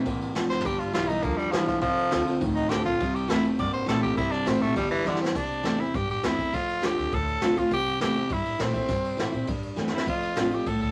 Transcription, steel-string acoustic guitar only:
0.06 E3
0.35 F3
0.65 G3
0.93 G3 B3 E4
1.08 B3 E4
1.23 D3
1.52 G3 B3 E4
1.66 B3 E4
1.81 F2
2.10 D3 A3 C4 F4
2.26 C4 F4
2.41 A2
2.69 D3 A3 C4 F4
2.84 C4 F4
3.00 C3
3.28 E3 A3 C4 E4
3.43 C4 E4
3.59 G2
3.86 E3 A3 C4 E4
4.17 C3
4.46 E3 A3 C4 E4
4.61 C4 E4
4.76 G3
5.05 G3 B3 E4
5.19 B3 E4
5.35 C3
5.63 E3 A3 C4 E4
5.78 C4 E4
5.94 G2
6.23 E3 A3 C4 E4
6.37 C4 E4
6.53 F2
6.82 D3 A3 C4 F4
7.13 A2
7.41 D3 A3 C4 F4
7.56 C4 F4
7.71 C3
8.00 E3 A3 C4 E4
8.15 C4 E4
8.30 G2
8.59 E3 A3 C4 E4
8.73 C4 E4
8.89 C3
9.17 E3 A3 C4 E4
9.32 C4 E4
9.47 G2
9.76 E3 A3 C4 E4
9.92 C4 E4
10.06 F2
10.36 D3 A3 C4 F4
10.51 C4 F4
10.66 A2

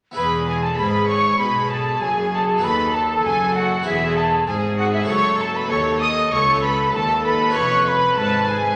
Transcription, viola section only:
0.16 G#4
0.78 G#4
1.39 G#4
2.01 G#4
2.62 A4
3.84 G#4
4.47 G#4
5.07 A4
5.69 A4
6.31 A4
6.93 A4
7.54 B4

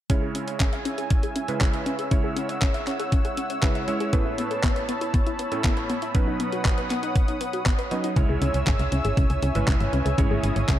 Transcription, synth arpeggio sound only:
0.10 C#4
0.22 G#4
0.35 C#4
0.48 C#5
0.60 C#4
0.73 E5
0.85 C#4
0.98 G#4
1.11 C#4
1.23 G#4
1.36 C#4
1.48 C#5
1.61 C#4
1.74 E5
1.86 C#4
1.99 G#4
2.11 C#4
2.24 G#4
2.36 C#4
2.49 C#5
2.62 C#4
2.74 E5
2.87 C#4
3.00 G#4
3.12 C#4
3.25 G#4
3.37 C#4
3.50 C#5
3.63 C#4
3.75 E5
3.88 C#4
4.00 G#4
4.13 B3
4.26 E4
4.38 B3
4.51 A4
4.63 B3
4.76 B4
4.89 B3
5.01 E4
5.14 B3
5.27 E4
5.39 B3
5.52 A4
5.64 B3
5.77 B4
5.90 B3
6.02 E4
6.15 B3
6.28 D#4
6.40 B3
6.53 F#4
6.65 B3
6.78 B4
6.90 B3
7.03 D#4
7.16 B3
7.28 D#4
7.41 B3
7.53 F#4
7.66 B3
7.79 B4
7.91 B3
8.04 D#4
8.16 C#4
8.29 G#4
8.42 C#4
8.54 C#5
8.67 C#4
8.79 E5
8.92 C#4
9.05 G#4
9.17 C#4
9.30 G#4
9.43 C#4
9.55 C#5
9.68 C#4
9.80 E5
9.93 C#4
10.06 G#4
10.18 C#4
10.31 G#4
10.43 C#4
10.56 C#5
10.69 C#4

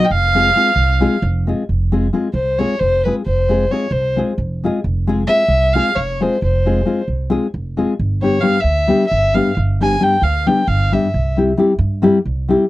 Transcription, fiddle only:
0.04 G5
0.11 F5
2.34 C5
2.59 C#5
2.79 C5
3.04 B4
3.26 C5
3.71 C#5
3.92 C5
5.28 E5
5.74 F5
5.95 C#5
6.22 C5
6.43 C5
8.22 C#5
8.41 F5
8.60 E5
9.07 E5
9.34 F5
9.82 G#5
10.03 G5
10.23 F5
10.47 G5
10.68 F5
10.94 E5

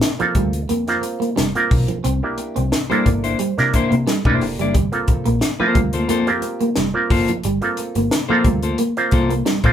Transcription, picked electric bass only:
0.21 muted picked electric bass stroke
0.35 D2
0.71 F2
1.38 F1
1.71 B1
2.05 C2
2.57 C2
2.91 muted picked electric bass stroke
3.06 G1
3.58 C3
3.92 C3
4.25 E1
4.42 F1
4.59 F#1
4.75 G1
5.27 A#1
5.60 muted picked electric bass stroke
5.75 D2
6.09 F2
6.77 F1
7.11 F#1
7.45 G1
7.96 G1
8.30 muted picked electric bass stroke
8.45 D2
9.12 C2
9.64 A#1

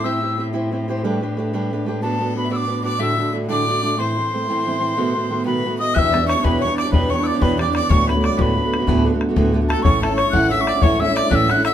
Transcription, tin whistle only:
0.04 E6
2.03 A5
2.37 B5
2.52 E6
2.57 D6
2.85 D6
3.02 E6
3.52 D6
3.85 D6
3.99 C6
5.46 B5
5.79 D#6
5.94 F#6
5.99 E6
6.28 C#6
6.41 B5 C#6
6.61 C#6
6.77 D6
6.92 B5
7.10 C#6
7.24 D6 E6
7.42 B5
7.61 D6
7.76 D6
7.91 C#6
8.09 B5
8.25 D6
8.42 B5
9.69 A5
9.82 C#6
10.02 A5
10.16 C#6
10.31 F#6
10.51 E6
10.61 C#6
10.66 D6
10.83 C#6
11.00 E6
11.16 D6
11.31 F#6
11.35 E6
11.51 F#6
11.65 E6

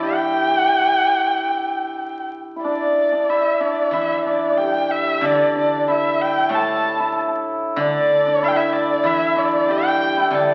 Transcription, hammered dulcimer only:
Already playing: D4 E4
0.03 G4
2.56 E4
2.65 D4
3.12 D4
3.29 E4
3.60 D4
3.93 E4
4.26 D4
4.53 A4
4.58 G4
5.23 D4
5.56 D4
5.88 E4
6.51 A4
7.00 E4
7.80 D4
8.27 D4
8.42 E4
8.55 E4
9.05 E4
9.36 D4
9.69 G4
10.17 E4
10.32 D4

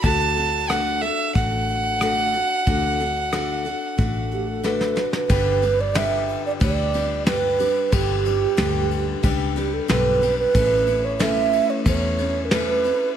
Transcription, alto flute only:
4.33 G4
4.44 G4
4.49 A4
4.65 B4
5.15 B4
5.81 D5
5.97 E5
6.46 D5
6.63 D5
7.28 B4
7.93 G4
9.57 G4
9.74 A4
9.90 B4
10.39 B4
11.05 C#5
11.21 E5
11.70 C#5
11.86 C#5
12.45 A#4
12.52 B4

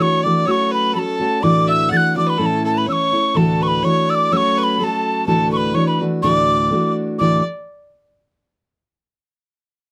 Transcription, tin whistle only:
0.02 C#6
0.24 D6
0.47 C#6 E6
0.74 B5
0.95 A5 B5
1.43 D6
1.69 E6
1.93 A6
1.97 F#6
2.17 D6
2.30 B5
2.41 B5
2.46 A5
2.66 A5
2.78 B5
2.89 C#6 E6
3.37 A5
3.63 C#6
3.68 B5
3.85 C#6
4.10 E6
4.15 D6
4.33 E6
4.37 C#6
4.59 C#6
4.63 B5
4.81 A5 B5
5.28 A5
5.53 C#6
5.57 B5
5.74 C#6
5.87 B5
6.23 C#6
6.34 D6
7.19 D6

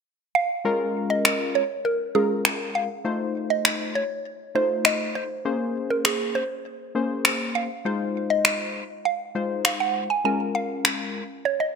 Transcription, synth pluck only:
0.35 F5
1.10 D#5
1.55 C#5
1.85 A#4
2.15 G#4
2.75 F5
3.50 D#5
3.95 C#5
4.55 C5
4.85 D#5
5.15 C5
5.90 A#4
6.05 G#4
6.35 C5
7.55 F5
8.30 D#5
9.05 F5
9.65 F5
9.80 F#5
10.10 G#5
10.25 G#5
10.55 F5
11.45 C#5
11.60 D#5

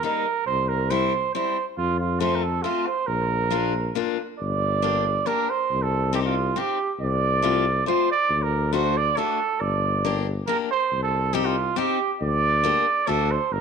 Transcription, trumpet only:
0.06 A#4
0.46 C5
0.69 A#4
0.91 C5
1.34 C5
1.78 F4
2.00 F4
2.20 C5
2.35 A#4
2.42 A4
2.62 F4
2.87 C5
3.07 A#4
4.39 D5
5.27 A#4
5.50 C5
5.82 A4
6.15 G4
6.26 F4
6.59 G4
7.02 D5
7.87 C5
8.11 D5
8.42 A#4
8.73 C5
8.97 D5
9.17 A4
9.61 D5
10.47 A#4
10.71 C5
11.03 A4
11.34 G4
11.46 F4
11.78 G4
12.21 D5
13.08 A4
13.31 C5
13.53 A#4

